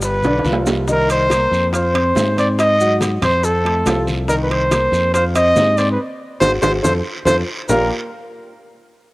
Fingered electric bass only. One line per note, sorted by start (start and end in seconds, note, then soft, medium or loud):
0.00 0.21 G1 medium
0.22 0.43 B1 medium
0.45 1.46 C2 medium
1.51 2.12 F2 medium
2.16 3.17 G#2 medium
3.22 3.82 F2 medium
3.86 4.87 C2 medium
4.92 5.53 F2 medium
5.56 5.96 G#2 loud
6.41 6.58 G#1 medium
6.62 6.79 G#1 medium
6.84 7.00 F2 medium
7.25 7.42 F2 medium
7.69 7.89 A#1 medium